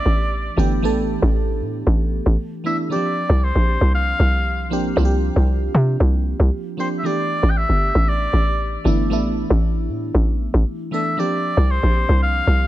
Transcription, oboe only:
0.00 0.58 D5 loud
2.66 2.77 E5 medium
2.92 3.45 D5 loud
3.44 3.94 C5 loud
3.95 4.68 F5 loud
6.80 6.88 C5 medium
6.98 7.07 E5 medium
7.06 7.52 D5 loud
7.50 7.59 G5 medium
7.57 8.10 E5 loud
8.09 8.86 D5 loud
10.93 11.21 E5 medium
11.19 11.72 D5 loud
11.71 12.22 C5 loud
12.23 12.67 F5 loud

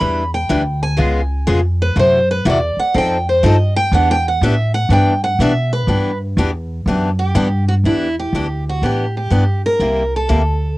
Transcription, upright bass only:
0.01 0.48 E2 medium
0.50 0.97 D2 medium
0.99 1.46 C#2 medium
1.48 1.95 F2 medium
1.96 2.44 F#2 medium
2.45 2.75 E2 medium
2.77 muted upright bass stroke soft
2.95 3.42 F2 medium
3.43 3.91 G2 medium
3.92 4.40 E2 medium
4.41 4.88 A2 loud
4.89 5.37 G2 medium
5.39 5.87 B2 loud
5.87 6.35 G2 medium
6.37 6.85 E2 loud
6.86 7.34 F#2 medium
7.35 7.83 G2 loud
7.84 8.32 E2 medium
8.33 8.81 D2 medium
8.82 9.30 A2 medium
9.31 9.79 G2 medium
9.80 10.28 C2 medium
10.30 10.77 D2 medium

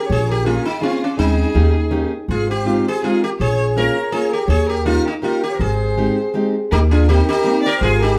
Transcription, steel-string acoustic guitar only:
0.45 0.65 A#3 medium
0.45 0.65 C#4 medium
0.45 0.65 F4 soft
0.45 0.65 G#4 medium
0.81 1.01 A#3 medium
0.81 1.01 C#4 soft
0.81 1.02 F4 soft
0.81 1.02 G#4 medium
1.17 1.48 G#3 soft
1.17 1.48 C4 soft
1.17 1.48 D#4 soft
1.17 1.48 G#4 medium
1.54 1.75 A#3 medium
1.54 1.75 C#4 soft
1.54 1.75 D#4 soft
1.54 1.75 G4 medium
1.91 2.12 A#3 medium
1.91 2.12 C#4 medium
1.91 2.12 D#4 soft
1.91 2.12 G4 medium
2.65 2.85 G#3 soft
2.65 2.86 C4 soft
2.65 2.86 D#4 soft
2.65 2.86 F4 medium
3.03 3.23 G#3 soft
3.03 3.23 C4 soft
3.03 3.23 D#4 soft
3.03 3.24 F4 medium
3.76 3.96 A#3 soft
3.76 3.96 C#4 soft
3.76 3.96 F4 soft
3.76 3.96 G#4 medium
4.12 4.32 A#3 soft
4.12 4.32 C#4 soft
4.12 4.32 F4 soft
4.12 4.33 G#4 medium
4.85 5.06 A#3 soft
4.85 5.06 C#4 soft
4.85 5.06 D#4 soft
4.85 5.06 G4 medium
5.22 5.42 A#3 soft
5.22 5.43 C#4 soft
5.22 5.43 D#4 soft
5.22 5.43 G4 medium
5.97 6.17 G#3 soft
5.97 6.18 C4 soft
5.97 6.18 D#4 soft
5.97 6.18 G4 medium
6.34 6.54 G#3 medium
6.34 6.55 C4 soft
6.34 6.55 D#4 soft
6.34 6.55 G4 medium
7.09 7.28 A#3 medium
7.09 7.29 C4 medium
7.09 7.29 D#4 soft
7.09 7.29 G4 medium
7.44 7.65 A#3 medium
7.44 7.65 C4 medium
7.44 7.65 D#4 soft
7.44 7.65 G4 medium

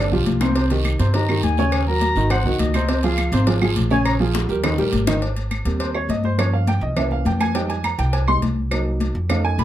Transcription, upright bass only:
0.11 0.25 B1 medium
0.27 0.94 C2 loud
0.99 1.40 G2 loud
1.43 2.11 D#2 loud
2.16 2.43 G#1 loud
2.44 2.58 C2 medium
2.59 3.27 C#2 loud
3.32 3.73 G#1 loud
3.76 4.43 A#1 loud
4.49 4.76 D#2 loud
4.78 4.92 A#1 medium
4.93 5.60 G#1 medium
5.65 6.06 D#2 loud
6.09 6.76 G2 medium
6.81 7.22 C2 loud
7.25 7.93 F2 loud
7.98 8.39 C2 loud
8.42 9.09 C2 medium
9.15 9.55 F2 loud
9.58 9.64 A#1 loud

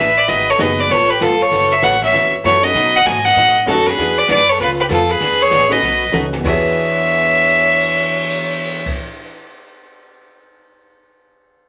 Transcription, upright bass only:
0.00 0.27 A1 medium
0.28 0.58 G#1 medium
0.59 0.89 F#1 medium
0.90 1.20 A1 medium
1.21 1.51 G1 medium
1.51 1.81 F#1 medium
1.82 2.12 A1 medium
2.13 2.43 E2 medium
2.44 2.74 F#2 medium
2.75 3.05 B2 medium
3.06 3.36 G#2 medium
3.36 3.66 A2 medium
3.67 3.97 F#2 medium
3.98 4.28 E2 medium
4.29 4.59 F#2 loud
4.59 4.89 C#2 medium
4.90 5.20 F2 medium
5.21 5.51 E2 medium
5.51 5.82 A1 medium
5.82 6.13 B1 medium
6.13 6.43 C#2 medium
6.44 8.86 E2 medium

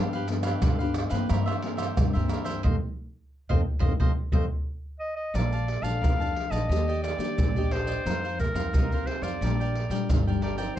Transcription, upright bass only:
0.00 0.52 G2 loud
0.62 1.05 G2 medium
1.12 1.27 G2 medium
1.30 1.88 G2 medium
1.98 2.12 G2 medium
2.16 2.65 G2 medium
2.66 2.78 F2 medium
3.50 3.63 F2 medium
3.82 3.95 F2 medium
4.00 4.12 F2 medium
4.32 4.46 F2 medium
5.34 5.78 A#1 medium
5.82 5.98 A#1 medium
6.01 6.31 F2 medium
6.51 6.67 A#1 medium
6.69 7.13 D#2 medium
7.19 7.34 D#3 medium
7.38 7.96 A#1 medium
8.06 8.49 F2 medium
8.54 8.70 F2 medium
8.73 9.02 C2 medium
9.22 9.38 F2 medium
9.41 9.85 A#1 medium
9.90 10.06 A#2 medium
10.10 10.67 G1 medium

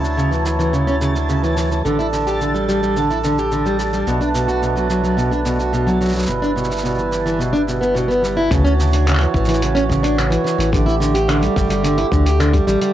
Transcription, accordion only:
0.00 1.82 F#3 medium
0.00 1.82 E4 medium
0.00 1.82 C#5 medium
1.84 4.04 G3 medium
1.84 6.25 D4 medium
1.84 4.04 A4 medium
4.08 6.27 A3 medium
4.08 8.47 B4 medium
6.28 8.48 G3 medium
6.28 8.48 E4 medium
8.51 10.71 E3 medium
8.51 10.71 F#4 medium
8.51 10.71 C#5 medium
10.73 12.93 D3 medium
10.73 12.93 A3 medium
10.73 12.93 G4 medium

